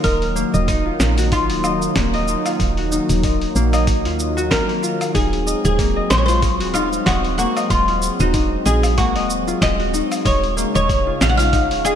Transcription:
Already playing: D#3 F#3 A#3 D#4 F#4
0.04 D#1 D#4 A#4 D#5, kick, open hi-hat, cabasa
0.22 open hi-hat
0.36 A#3, cabasa
0.54 D#1 D#5, cabasa
0.68 D#4, kick, open hi-hat, cabasa
0.85 F4
1.00 A#1, snare, cabasa
1.18 F#4, open hi-hat, cabasa
1.32 D#4 F4, kick, open hi-hat, cabasa
1.50 D#1, open hi-hat
1.64 D#5, cabasa, low woodblock
1.82 cabasa
1.96 D#1 A#3, kick, snare, open hi-hat, cabasa
2.14 D#5, open hi-hat
2.28 cabasa
2.46 F4, open hi-hat, cabasa, low woodblock
2.60 D#1, kick, open hi-hat, cabasa
2.77 F#4, open hi-hat
2.92 D#4, cabasa
3.09 D#1, open hi-hat, cabasa
3.23 D#5, kick, open hi-hat, cabasa
3.41 open hi-hat
3.55 A#1 A#3, cabasa
3.73 D#5, open hi-hat, cabasa, low woodblock
3.87 kick, open hi-hat, cabasa
4.05 D#2 F4, open hi-hat
4.20 cabasa
4.37 F#4, cabasa
4.51 C#2 A#4, kick, snare, open hi-hat, cabasa
4.68 A#3, open hi-hat
4.83 F4, cabasa
5.01 open hi-hat, cabasa, low woodblock
5.14 D#1 G#3 C4 D#4 G#4, kick, open hi-hat, cabasa
5.33 open hi-hat
5.47 D#5, cabasa
5.65 D#1 G#4, cabasa
5.79 A#3, kick, open hi-hat, cabasa
5.96 D#5
6.10 A#1 C5, snare, cabasa
6.18 C#5
6.26 F4 C5, open hi-hat, cabasa
6.42 kick, open hi-hat, cabasa
6.60 D#1 F#4, open hi-hat
6.74 D#4 F4, cabasa, low woodblock
6.93 cabasa
7.06 D#1 F#4 D#5, kick, snare, open hi-hat, cabasa
7.24 open hi-hat
7.38 A#3 F#4, cabasa
7.56 D#5, open hi-hat, cabasa, low woodblock
7.70 D#1 F4, kick, open hi-hat, cabasa
7.88 F4, open hi-hat
8.02 cabasa
8.20 D#1 D#4 F#4, cabasa
8.34 D#4, kick, open hi-hat, cabasa
8.66 A#1 G#4 D#5, cabasa
8.83 open hi-hat, cabasa, low woodblock
8.97 A#3 F#4, kick, open hi-hat, cabasa
9.16 D#1 D#5, open hi-hat
9.30 cabasa
9.47 F4, cabasa
9.62 D#1 D#5, kick, snare, open hi-hat, cabasa
9.80 F#4, open hi-hat
9.94 D#4, cabasa
10.12 open hi-hat, cabasa, low woodblock
10.25 D#1 C#3 D#4 C#5 D#5 F5, kick, open hi-hat, cabasa
10.44 open hi-hat
10.57 A#3, cabasa
10.74 D#1 C#5 D#5, cabasa
10.89 kick, open hi-hat, cabasa
11.07 F4
11.21 A#1 F5, snare, cabasa
11.29 F#5
11.37 F4 F5, open hi-hat, cabasa
11.53 D#4, kick, open hi-hat, cabasa
11.71 D#1, open hi-hat
11.85 G#4 D#5, cabasa, low woodblock

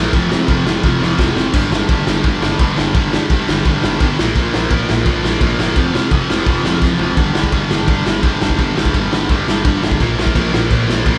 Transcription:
Already playing: A#2 F3 A#3
0.12 F1 F2 C3 F3, kick, crash
0.29 F2 C3 F3, snare
0.47 F1 F2 C3 F3, kick, crash
0.65 F1 F2 C3 F3, snare
0.83 F1 F2 C3 F3, kick, snare
1.01 F1 F2 C3 F3, snare
1.18 F1 F2 C3 F3, kick, snare
1.36 F#1 F2 C3 F3, snare
1.53 G1 G2 D3 G3, kick, splash, crash
1.71 G1 G2 D3 G3, snare
1.89 G1 G2 D3 G3, kick, crash
2.06 G1 G2 D3 G3, snare
2.24 G1 G2 D3 G3, kick, crash
2.42 G1 G2 D3 G3, snare
2.59 G1 G2 D3 G3, kick, crash
2.77 G1 G2 D3 G3, snare
2.94 G1 G2 D3 G3, kick, crash
3.12 G2 D3 G3, snare
3.30 G1 G2 D3 G3, kick, crash
3.48 G1 G2 D3 G3, snare
3.65 G1 G2 D3 G3, kick, crash
3.83 G1 G2 D3 G3, snare
4.00 G1 G2 D3 G3, kick, crash
4.18 A#1 A#2 F3 A#3, snare
4.35 A#1 A#2 F3 A#3, kick, crash
4.53 A#1 A#2 F3 A#3, snare
4.70 A#1 A#2 F3 A#3, kick, crash
4.89 A#1 A#2 F3 A#3, snare
5.05 A#1 A#2 F3 A#3, kick, crash
5.23 A#1 A#2 F3 A#3, snare
5.41 A#1 A#2 F3 A#3, kick, crash
5.58 G1 A#2 F3 A#3, snare
5.76 F1 F2 C3 F3, kick, crash
5.94 F2 C3 F3, snare
6.11 F1 F2 C3 F3, kick, crash
6.29 F1 F2 C3 F3, snare
6.47 F1 F2 C3 F3, kick, crash
6.64 F1 F2 C3 F3, snare
6.81 F1 F2 C3 F3, kick, snare
6.99 F1 F2 C3 F3, floor tom
7.16 G1 G2 D3 G3, kick, crash
7.33 G1 G2 D3 G3, snare
7.44 kick
7.52 G1 G2 D3 G3, kick, crash
7.69 G1 G2 D3 G3, snare
7.88 G1 G2 D3 G3, kick, crash
8.06 G1 G2 D3 G3, snare
8.23 G1 G2 D3 G3, kick, crash
8.41 G1 G2 D3 G3, snare
8.50 kick
8.58 G1 G2 D3 G3, kick, crash
8.76 G1 G2 D3 G3, snare
8.85 kick
8.94 G1 G2 D3 G3, kick, crash
9.12 G1 G2 D3 G3, snare
9.29 D2 G2 D3 G3, kick, crash
9.48 G1 G2 D3 G3, snare
9.65 G1 G2 D3 G3, kick, crash
9.82 G1 G2 D3 G3, snare
9.91 kick
10.00 A#1 A#2 F3 A#3, kick, crash
10.18 A#1 A#2 F3 A#3, snare
10.27 kick
10.35 A#1 A#2 F3 A#3, kick, crash
10.53 A#1 A#2 F3 A#3, snare
10.71 A#1 A#2 F3 A#3, kick, crash
10.88 A#1 A#2 F3 A#3, snare
11.06 A#1 A#2 F3 A#3, kick, crash

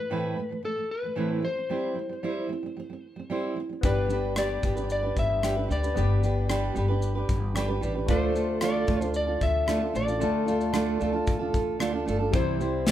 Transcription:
Already playing: B4
0.10 A2 E3 A3 C4 E4 B4
0.36 A2 E3 A3
0.49 A2 E3 A3
0.63 A2 E3 A3 A4
0.75 A2 E3 A3
0.91 B4
1.02 A2 E3 A3
1.15 A2 E3 A3 C4 E4 B4
1.42 G3 C4 C5
1.55 G3 C4
1.70 G3 C4 E4 C5
1.95 G3 C4
2.09 G3 C4
2.23 G3 C4 E4 C5
2.49 G3 C4
2.63 G3 C4
2.77 G3 C4
2.90 G3 C4
3.16 G3 C4
3.30 G3 C4 E4 C5
3.56 G3
3.69 G3 C4
3.81 G1 G3 B3 D4 G4 B4 D5, kick, shaker
3.86 B4
4.09 G3 D4 G4 B4, shaker
4.36 G3 D4 G4 B4 D5, cross-stick, shaker
4.62 G1 G3 D4 G4 B4, kick, shaker
4.76 D4 G4 B4, shaker
4.90 D5, shaker
5.03 D4 G4 B4
5.17 G1 E5, kick, shaker
5.42 G3 D4 G4 B4, cross-stick, shaker
5.55 D4 G4 B4
5.68 D2 G3 D4 G4 B4 D5, shaker
5.82 D4 G4 B4, shaker
5.94 G1 G3 B3 D4 G4 B4 D5, shaker
6.23 G3 D4 G4 B4, shaker
6.49 G3 D4 G4 B4, cross-stick, shaker
6.75 G1 G3 D4 G4 B4, shaker
6.88 D4 G4 B4
7.02 shaker
7.15 D4 G4 B4
7.29 G1, kick, shaker
7.55 G3 D4 G4 B4, cross-stick, shaker
7.68 D4 G4 B4
7.81 A1 G3 D4 G4 B4, shaker
7.95 D4 G4 B4
8.06 D2 D3 A3 D4 F4, kick, shaker
8.10 F4 A4 C5 D5
8.34 A3 D4 F4 A4, shaker
8.60 D3 A3 D4 F4 A4 D5, cross-stick, shaker
8.87 D2 A3 D4 F4 A4, kick, shaker
9.01 D4 F4 A4, shaker
9.14 D5, shaker
9.27 D4 F4 A4
9.41 D2 E5, kick, shaker
9.67 D3 A3 D4 F4 A4, cross-stick, shaker
9.81 D4 F4 A4
9.93 A1 A3 D4 F4 A4 D5, shaker
10.07 D4 F4 A4, shaker
10.19 D2 D3 A3 D4 F4 A4, shaker
10.23 A4
10.46 A3 D4 F4 A4, shaker
10.61 shaker
10.73 D3 A3 D4 F4 A4, cross-stick, shaker
11.00 D2 A3 D4 F4 A4, shaker
11.13 D4 F4 A4
11.27 kick, shaker
11.39 D4 F4 A4
11.54 D2, kick, shaker
11.79 D3 A3 D4 F4 A4, cross-stick, shaker
11.92 D4 F4 A4
12.05 G1 A3 D4 F4 A4, shaker
12.19 D4 F4 A4
12.31 C2 C3 E3 G3 C4 E4 C5, kick, shaker
12.35 C5
12.59 G3 C4 E4 C5, shaker
12.86 C3 E3 G3 C4 E4 C5, snare, shaker

